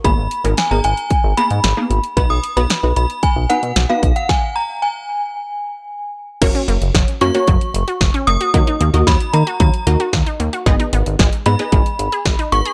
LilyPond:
<<
  \new Staff \with { instrumentName = "Synth bell" } { \time 4/4 \key fis \major \tempo 4 = 113 b''4 gis''16 ais''16 gis''4 b''4. | b''16 dis'''8 b''8. b''8 gis''8 fis''8. eis''8 fis''16 | gis''8 ais''8 gis''2~ gis''8 r8 | r4. cis'''2 dis'''8~ |
dis'''4 b''8 ais''8 ais''4 r4 | r4. b''2 cis'''8 | }
  \new Staff \with { instrumentName = "Synth pluck" } { \time 4/4 \key fis \major <ais b dis' gis'>8 r16 <b dis' gis' ais'>8 <b dis' gis' ais'>4 r16 <ais b dis' gis'>8 r16 <ais b dis' gis'>8 r16 | <b dis' fis' b'>8 r16 <b dis' fis' b'>8 <b dis' fis' b'>4 r16 <b dis' fis' b'>8 r16 <b dis' fis' b'>8 r16 | r1 | <ais cis' fis' ais' cis''>4~ <ais cis' fis' ais' cis''>16 r16 <ais cis' fis' ais' cis''>16 <ais cis' fis' ais' cis''>4.~ <ais cis' fis' ais' cis''>16 r8 |
<ais dis' fis' ais' dis''>8 r16 <ais dis' fis' ais' dis''>4. r16 <ais dis' fis' ais' dis''>4~ <ais dis' fis' ais' dis''>16 r16 | <b dis' gis' b' dis''>4~ <b dis' gis' b' dis''>16 r16 <b dis' gis' b' dis''>16 <b dis' gis' b' dis''>4.~ <b dis' gis' b' dis''>16 r8 | }
  \new Staff \with { instrumentName = "Synth arpeggio sound" } { \time 4/4 \key fis \major r1 | r1 | r1 | fis16 cis'16 ais16 r16 fis16 r16 ais16 fis'16 fis16 r8 fis'16 r16 cis'16 ais16 fis'16 |
fis16 dis'16 ais16 r16 fis16 r16 ais16 fis'16 fis16 r8 fis'16 r16 dis'16 ais16 fis'16 | gis16 dis'16 b16 r16 gis16 r16 b16 gis'16 gis16 r8 gis'16 r16 dis'16 b16 gis'16 | }
  \new Staff \with { instrumentName = "Analog synth bass" } { \clef bass \time 4/4 \key fis \major gis,,16 gis,,16 r16 gis,,16 r16 gis,,16 gis,,16 r8 gis,,16 r16 gis,16 gis,,16 r16 gis,,16 r16 | b,,16 b,,16 r16 b,,16 r16 b,,16 b,,16 r8 b,,16 r16 b,16 b,,16 r16 b,,16 r16 | r1 | fis,,16 r16 fis,,16 fis,,16 fis,,16 r16 fis,16 r16 fis,,16 r16 fis,,16 r16 fis,,16 r16 fis,,16 r16 |
dis,16 r16 dis,16 dis,16 dis,16 r16 dis16 r16 dis,16 r16 dis,16 r16 dis,16 r16 dis,16 r16 | gis,,16 r16 gis,,16 gis,,16 gis,,16 r16 gis,16 r16 gis,,16 r16 gis,,16 r16 gis,,16 r16 gis,,16 r16 | }
  \new DrumStaff \with { instrumentName = "Drums" } \drummode { \time 4/4 <hh bd>8 hh16 hh16 <hh sn>8 hh16 hh16 <hh bd>8 hh16 hh16 <hh sn>8 hh16 hh16 | <hh bd>8 hh16 hh16 <hh sn>8 hh16 hh16 <hh bd>8 hh16 hh16 <hh sn>8 <hh bd>16 hh16 | <bd sn>4 r4 r4 r4 | <cymc hh bd>16 hh16 hh16 hh16 <hh bd sn>16 hh16 hh16 hh16 <hh bd>16 hh16 hh16 hh16 <hh bd sn>16 hh16 hh16 hh16 |
<hh bd>16 hh16 hh16 hh16 <hh bd sn>16 hh16 hh16 hh16 <hh bd>16 hh16 hh16 hh16 <hh bd sn>16 hh16 hh16 hh16 | <hh bd>16 hh16 hh16 hh16 <hh bd sn>16 hh16 hh16 hh16 <hh bd>16 hh16 hh16 hh16 <hh bd sn>16 hh16 hh16 hh16 | }
>>